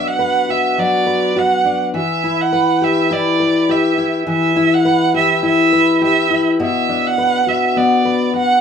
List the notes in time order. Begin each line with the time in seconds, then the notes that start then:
Already playing: B2 F#3 D4 F#4 B4
0.07 F#5
0.19 B4
0.49 F#4 E5
0.78 F#3 D5
1.06 B4
1.36 F#4 F#5
1.65 D4
1.94 E3 E5
2.24 E4
2.41 F#5
2.53 B4
2.82 G4 E5
3.11 E4 D5
3.40 B4
3.69 G4 E5
3.98 E4
4.27 E3 E5
4.56 E4
4.74 F#5
4.85 B4
5.14 G4 E5
5.43 E4 E5
5.73 B4
6.01 G4 E5
6.30 E4
6.60 B2 E5
6.89 D4
7.07 F#5
7.18 B4
7.47 F#4 E5
7.76 B3 D5
8.05 B4
8.34 F#4 F#5